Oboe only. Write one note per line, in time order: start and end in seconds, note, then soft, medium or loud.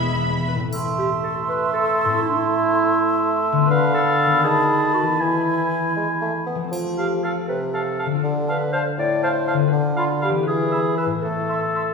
0.73 3.66 E5 soft
3.70 4.46 F5 medium
4.45 5.22 A5 medium
5.20 6.47 G#5 soft
6.98 7.07 F5 soft
7.24 7.33 F5 soft
7.74 7.83 F5 soft
7.99 8.08 F5 soft
8.49 8.58 F5 soft
8.73 8.82 F5 soft
9.23 9.32 F5 soft
9.48 9.56 F5 soft
9.96 10.05 F5 soft
10.21 10.30 F5 medium
10.72 10.81 E5 soft
10.97 11.06 E5 soft
11.49 11.58 E5 soft
11.75 11.84 E5 soft